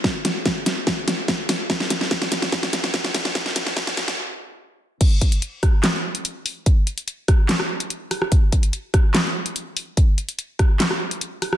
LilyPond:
\new DrumStaff \with { instrumentName = "Drums" } \drummode { \time 4/4 \tempo 4 = 145 <bd sn>8 <hh sn>8 <bd sn>8 <hh sn>8 <bd sn>8 <hh sn>8 <bd sn>8 <hho sn>8 | <bd sn>16 sn16 <hh sn>16 sn16 <bd sn>16 sn16 <hh sn>16 sn16 <bd sn>16 sn16 <hh sn>16 sn16 <bd sn>16 sn16 <hho sn>16 sn16 | <bd sn>16 sn16 <hh sn>16 sn16 <bd sn>16 sn16 <hho sn>16 sn16 r4 r4 | <cymc hh bd>8 <hh bd>16 hh16 hh8 <hh bd ss>8 <hc hh sn>8. hh16 hh8 hho8 |
<hh bd>8 hh16 hh16 hh8 <hh bd ss>8 <hc hh sn>16 ss8 hh16 hh8 <hho ss>16 ss16 | <hh bd>8 <hh bd>16 hh16 hh8 <hh bd ss>8 <hc hh sn>8. hh16 hh8 hho8 | <hh bd>8 hh16 hh16 hh8 <hh bd ss>8 <hc hh sn>16 ss8 hh16 hh8 <hho ss>16 ss16 | }